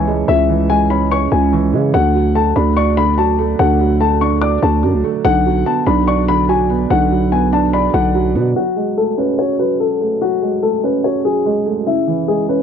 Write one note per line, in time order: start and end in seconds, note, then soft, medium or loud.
0.00 0.24 C#2 loud
0.00 0.28 C#3 medium
0.00 0.49 E3 medium
0.00 0.08 G#3 medium
0.00 0.28 C#4 medium
0.00 0.49 C#5 medium
0.00 0.26 G#5 medium
0.08 0.68 G#3 medium
0.28 1.28 C#2 loud
0.28 1.30 C#3 medium
0.28 0.67 E5 loud
0.49 1.51 E3 medium
0.70 1.72 G#3 medium
0.70 0.85 G#5 medium
0.90 1.94 C#4 medium
0.90 1.06 B5 medium
1.11 1.94 C#5 medium
1.11 1.27 C#6 medium
1.32 1.75 C#2 loud
1.32 1.94 C#3 medium
1.32 1.90 G#5 medium
1.52 1.94 E3 medium
1.73 1.93 C#3 loud
1.73 1.94 G#3 medium
1.94 2.53 D2 loud
1.94 2.96 D3 medium
1.94 2.33 F#5 loud
2.15 3.16 F#3 medium
2.35 3.37 A3 medium
2.35 2.51 A5 medium
2.56 3.55 D2 loud
2.56 3.59 D4 loud
2.56 2.72 B5 medium
2.77 3.80 D5 medium
2.77 2.92 C#6 medium
2.97 3.58 D3 medium
2.97 3.13 B5 loud
3.18 3.78 F#3 medium
3.18 3.57 A5 medium
3.39 3.99 A3 medium
3.59 4.59 D2 loud
3.59 4.61 D3 medium
3.59 3.98 F#5 medium
3.80 4.82 F#3 medium
4.01 5.02 A3 medium
4.01 4.16 A5 medium
4.21 5.25 D4 medium
4.21 4.37 C#6 medium
4.42 5.25 D5 medium
4.42 4.58 D6 medium
4.63 4.85 D2 loud
4.63 5.23 D3 medium
4.63 5.21 A5 medium
4.83 4.95 F#2 loud
4.83 5.25 F#3 medium
4.94 5.04 D2 loud
5.04 5.25 A3 medium
5.25 5.65 B1 loud
5.25 6.27 D3 medium
5.25 5.64 F#5 loud
5.46 6.47 F#3 medium
5.66 6.68 B3 medium
5.66 5.82 A5 medium
5.87 6.86 B1 loud
5.87 6.90 D4 loud
5.87 6.02 B5 medium
6.08 7.11 D5 medium
6.08 6.23 C#6 medium
6.28 6.89 D3 medium
6.28 6.44 B5 medium
6.49 7.10 F#3 loud
6.49 6.88 G#5 medium
6.70 7.30 B3 medium
6.90 7.90 B1 loud
6.90 7.93 D3 medium
6.90 7.29 F#5 medium
7.11 8.13 F#3 medium
7.32 8.34 B3 medium
7.32 7.48 G#5 medium
7.52 8.56 D4 loud
7.52 7.68 A5 medium
7.73 8.56 D5 medium
7.73 7.89 B5 medium
7.94 8.37 B1 loud
7.94 8.56 D3 medium
7.94 8.52 F#5 medium
8.15 8.55 F#3 medium
8.35 8.55 B2 loud
8.35 8.56 B3 medium
8.56 9.58 F#3 medium
8.56 8.95 F#4 loud
8.76 9.80 G#3 medium
8.97 9.99 A3 medium
8.97 9.13 A4 medium
9.18 10.21 C#4 medium
9.18 9.34 B4 medium
9.39 10.42 F#4 medium
9.39 9.54 C#5 medium
9.59 10.20 F#3 medium
9.59 9.75 B4 medium
9.80 10.19 A4 medium
10.01 10.61 A3 medium
10.22 11.23 F#3 medium
10.22 10.60 F#4 medium
10.42 11.44 G#3 medium
10.62 11.64 A3 medium
10.62 10.78 A4 medium
10.84 11.87 C#4 medium
10.84 10.99 B4 medium
11.04 11.87 F#4 medium
11.04 11.20 C#5 medium
11.25 11.87 F#3 medium
11.25 11.83 G#4 medium
11.45 11.87 G#3 loud
11.66 11.87 A3 medium
11.86 12.63 C#3 medium
11.86 12.26 E4 loud
12.07 12.63 E3 medium
12.28 12.63 G#3 medium
12.28 12.44 G#4 medium
12.49 12.63 C#4 medium
12.49 12.63 B4 medium